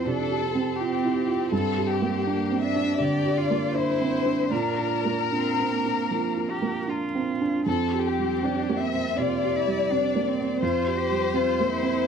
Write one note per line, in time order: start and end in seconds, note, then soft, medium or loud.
0.00 1.55 F2 soft
0.00 0.55 C4 soft
0.00 1.04 E4 soft
0.00 0.81 F4 soft
0.00 0.31 G4 soft
0.06 0.45 C3 soft
0.06 0.44 D4 soft
0.06 0.79 A4 medium
0.31 0.70 G4 soft
0.43 2.28 C4 soft
0.55 0.94 C4 soft
0.79 1.19 F4 soft
0.79 1.52 G4 soft
1.04 1.28 E4 soft
1.27 1.52 F4 soft
1.52 2.96 G2 soft
1.52 1.88 A4 medium
1.77 2.16 G4 soft
1.89 2.63 G4 soft
2.02 2.41 A#3 soft
2.26 2.65 A#3 soft
2.26 2.66 D4 soft
2.50 2.75 C4 soft
2.63 2.99 D4 soft
2.63 2.99 E5 medium
2.76 3.15 D4 soft
2.99 3.39 D3 soft
2.99 3.39 G4 soft
2.99 3.74 D5 medium
3.25 3.65 G4 soft
3.37 3.77 F4 soft
3.50 3.90 A#3 soft
3.74 4.15 D4 soft
3.74 4.51 E4 soft
3.74 4.52 C5 medium
4.01 4.26 C4 soft
4.25 4.51 D4 soft
4.51 6.07 A#2 soft
4.51 5.22 D4 soft
4.51 6.89 A#4 medium
4.78 5.21 F4 soft
5.05 5.48 A#3 soft
5.31 5.73 C4 soft
5.31 5.74 D4 soft
5.59 5.85 C4 soft
5.72 6.51 A#3 soft
5.85 6.27 D4 soft
6.11 6.53 F3 soft
6.36 6.78 F4 soft
6.50 6.91 G4 soft
6.62 7.04 A#3 soft
6.87 7.30 D4 soft
6.87 7.66 F4 soft
7.15 7.41 C4 soft
7.41 7.67 D4 soft
7.66 9.12 F2 soft
7.66 8.45 C4 soft
7.66 8.02 A4 soft
7.93 8.33 G4 soft
8.05 8.80 G4 soft
8.19 8.58 G3 soft
8.43 8.82 C4 soft
8.43 8.82 D4 soft
8.69 8.93 A#3 soft
8.80 9.19 C4 soft
8.80 9.17 E5 soft
8.93 9.32 C4 soft
9.17 9.57 C3 soft
9.17 9.57 F4 soft
9.17 10.63 D5 soft
9.44 9.82 G4 soft
9.56 9.93 E4 soft
9.67 10.05 G3 soft
9.90 10.29 C4 soft
9.90 10.29 D4 soft
10.16 10.39 A#3 soft
10.28 10.64 C4 soft
10.40 10.78 C4 soft
10.62 12.02 F2 soft
10.62 11.00 F4 soft
10.62 12.04 C5 medium
10.86 11.25 G4 soft
10.98 11.36 G4 soft
11.11 11.49 G3 soft
11.34 11.72 C4 soft
11.34 11.69 F4 soft
11.60 11.83 A#3 soft
11.70 12.07 E4 soft
11.82 12.07 C4 soft